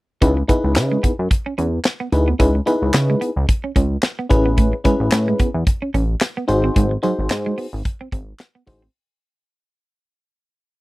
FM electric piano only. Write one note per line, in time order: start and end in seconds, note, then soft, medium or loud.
0.21 0.38 D#4 medium
0.21 0.39 E4 medium
0.21 0.39 G#4 medium
0.21 0.39 B4 medium
0.48 1.12 D#4 medium
0.48 1.12 E4 medium
0.48 1.12 G#4 medium
0.48 1.12 B4 medium
2.12 2.29 D#4 medium
2.12 2.29 E4 medium
2.12 2.29 G#4 medium
2.12 2.30 B4 medium
2.39 2.56 D#4 medium
2.39 2.56 E4 medium
2.39 2.57 G#4 medium
2.39 2.57 B4 medium
2.66 3.30 D#4 medium
2.66 3.30 E4 medium
2.66 3.30 G#4 medium
2.66 3.30 B4 loud
4.29 4.75 C#4 medium
4.29 4.75 E4 medium
4.29 4.75 G#4 medium
4.29 4.75 B4 loud
4.84 5.48 C#4 medium
4.84 5.48 E4 medium
4.84 5.48 G#4 medium
4.84 5.48 B4 loud
6.48 6.93 D#4 medium
6.48 6.93 F#4 medium
6.48 6.93 G#4 medium
6.48 6.94 C5 loud
7.03 7.66 D#4 medium
7.03 7.66 F#4 medium
7.03 7.66 G#4 medium
7.03 7.66 C5 medium
8.67 8.84 D#4 medium
8.67 8.84 F#4 medium
8.67 8.84 G#4 medium
8.67 8.84 C5 medium